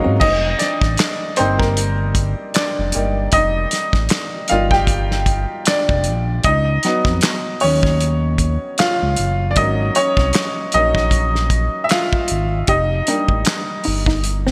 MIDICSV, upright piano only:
0, 0, Header, 1, 2, 480
1, 0, Start_track
1, 0, Tempo, 779221
1, 130, Time_signature, 4, 2, 24, 8
1, 8941, End_track
2, 0, Start_track
2, 0, Title_t, "Upright piano"
2, 0, Program_c, 0, 0
2, 0, Control_c, 0, 64, 127
2, 0, Note_on_c, 0, 54, 69
2, 0, Note_on_c, 0, 56, 65
2, 0, Note_on_c, 0, 58, 67
2, 0, Note_on_c, 0, 60, 60
2, 0, Note_on_c, 0, 61, 64
2, 0, Note_on_c, 0, 63, 80
2, 0, Note_on_c, 0, 65, 65
2, 0, Note_on_c, 0, 77, 83
2, 76, Note_off_c, 0, 54, 0
2, 79, Note_off_c, 0, 56, 0
2, 80, Note_off_c, 0, 58, 0
2, 83, Note_off_c, 0, 61, 0
2, 86, Note_off_c, 0, 63, 0
2, 111, Note_off_c, 0, 65, 0
2, 122, Note_on_c, 0, 75, 87
2, 134, Note_on_c, 0, 63, 71
2, 139, Control_c, 0, 64, 0
2, 142, Note_off_c, 0, 60, 0
2, 142, Note_off_c, 0, 77, 0
2, 242, Control_c, 0, 64, 127
2, 355, Note_off_c, 0, 63, 0
2, 362, Note_on_c, 0, 74, 82
2, 373, Note_off_c, 0, 75, 0
2, 376, Note_on_c, 0, 62, 68
2, 829, Note_off_c, 0, 62, 0
2, 844, Note_on_c, 0, 72, 80
2, 848, Note_on_c, 0, 55, 58
2, 854, Note_on_c, 0, 58, 49
2, 857, Note_on_c, 0, 60, 63
2, 857, Note_on_c, 0, 63, 67
2, 861, Note_off_c, 0, 74, 0
2, 978, Note_off_c, 0, 60, 0
2, 978, Note_on_c, 0, 70, 74
2, 984, Note_off_c, 0, 58, 0
2, 984, Note_off_c, 0, 72, 0
2, 994, Note_on_c, 0, 58, 58
2, 1178, Note_off_c, 0, 55, 0
2, 1183, Note_off_c, 0, 63, 0
2, 1551, Note_off_c, 0, 58, 0
2, 1568, Note_on_c, 0, 74, 84
2, 1581, Note_on_c, 0, 62, 68
2, 1585, Note_off_c, 0, 70, 0
2, 1815, Note_on_c, 0, 55, 50
2, 1817, Note_on_c, 0, 58, 44
2, 1821, Note_on_c, 0, 63, 50
2, 2029, Note_off_c, 0, 55, 0
2, 2030, Note_off_c, 0, 58, 0
2, 2031, Note_off_c, 0, 62, 0
2, 2032, Note_off_c, 0, 63, 0
2, 2051, Note_on_c, 0, 75, 92
2, 2064, Note_off_c, 0, 74, 0
2, 2066, Note_on_c, 0, 63, 63
2, 2753, Note_off_c, 0, 63, 0
2, 2768, Note_on_c, 0, 77, 90
2, 2775, Note_on_c, 0, 55, 59
2, 2778, Note_on_c, 0, 58, 50
2, 2783, Note_on_c, 0, 63, 68
2, 2783, Note_on_c, 0, 65, 72
2, 2792, Note_off_c, 0, 75, 0
2, 2901, Note_off_c, 0, 65, 0
2, 2902, Note_on_c, 0, 79, 89
2, 2906, Note_off_c, 0, 77, 0
2, 2916, Note_on_c, 0, 67, 74
2, 3468, Note_off_c, 0, 55, 0
2, 3469, Note_off_c, 0, 58, 0
2, 3472, Note_off_c, 0, 63, 0
2, 3472, Note_off_c, 0, 67, 0
2, 3493, Note_on_c, 0, 74, 92
2, 3506, Note_on_c, 0, 62, 71
2, 3507, Note_off_c, 0, 79, 0
2, 3953, Note_off_c, 0, 62, 0
2, 3969, Note_on_c, 0, 75, 92
2, 3979, Control_c, 0, 64, 0
2, 3984, Note_on_c, 0, 63, 73
2, 3986, Note_off_c, 0, 74, 0
2, 4070, Control_c, 0, 64, 127
2, 4216, Note_off_c, 0, 63, 0
2, 4216, Note_on_c, 0, 54, 56
2, 4222, Note_on_c, 0, 59, 56
2, 4226, Note_on_c, 0, 63, 60
2, 4689, Note_on_c, 0, 73, 97
2, 4702, Note_on_c, 0, 61, 77
2, 4711, Note_off_c, 0, 75, 0
2, 4909, Note_off_c, 0, 54, 0
2, 4912, Note_off_c, 0, 59, 0
2, 4913, Note_off_c, 0, 63, 0
2, 5391, Note_off_c, 0, 61, 0
2, 5414, Note_on_c, 0, 77, 98
2, 5429, Note_on_c, 0, 65, 75
2, 5431, Note_off_c, 0, 73, 0
2, 5837, Note_off_c, 0, 65, 0
2, 5856, Note_on_c, 0, 74, 76
2, 5867, Note_off_c, 0, 77, 0
2, 5892, Note_off_c, 0, 74, 0
2, 5894, Note_on_c, 0, 75, 93
2, 5899, Control_c, 0, 64, 0
2, 5899, Note_on_c, 0, 54, 57
2, 5902, Note_on_c, 0, 58, 51
2, 5905, Note_on_c, 0, 61, 61
2, 5908, Note_on_c, 0, 63, 68
2, 6023, Control_c, 0, 64, 127
2, 6123, Note_off_c, 0, 63, 0
2, 6135, Note_on_c, 0, 73, 106
2, 6137, Note_off_c, 0, 61, 0
2, 6139, Note_off_c, 0, 75, 0
2, 6146, Note_on_c, 0, 61, 72
2, 6590, Note_off_c, 0, 54, 0
2, 6591, Note_off_c, 0, 58, 0
2, 6593, Note_off_c, 0, 61, 0
2, 6616, Note_on_c, 0, 75, 99
2, 6618, Note_on_c, 0, 54, 53
2, 6622, Note_on_c, 0, 58, 47
2, 6623, Note_on_c, 0, 61, 58
2, 6627, Note_off_c, 0, 73, 0
2, 6627, Note_on_c, 0, 63, 77
2, 6830, Note_off_c, 0, 54, 0
2, 6832, Note_off_c, 0, 58, 0
2, 6833, Note_off_c, 0, 61, 0
2, 7275, Note_off_c, 0, 63, 0
2, 7294, Note_on_c, 0, 76, 74
2, 7315, Note_off_c, 0, 75, 0
2, 7332, Note_off_c, 0, 76, 0
2, 7335, Note_on_c, 0, 77, 92
2, 7348, Note_on_c, 0, 65, 72
2, 7788, Note_off_c, 0, 77, 0
2, 7795, Note_off_c, 0, 65, 0
2, 7817, Note_on_c, 0, 75, 90
2, 7818, Control_c, 0, 64, 0
2, 7828, Note_on_c, 0, 63, 76
2, 7942, Control_c, 0, 64, 127
2, 8057, Note_off_c, 0, 63, 0
2, 8059, Note_on_c, 0, 55, 55
2, 8061, Note_on_c, 0, 58, 50
2, 8066, Note_on_c, 0, 63, 60
2, 8750, Note_off_c, 0, 55, 0
2, 8751, Note_off_c, 0, 58, 0
2, 8753, Note_off_c, 0, 63, 0
2, 8941, Note_off_c, 0, 75, 0
2, 8941, End_track
0, 0, End_of_file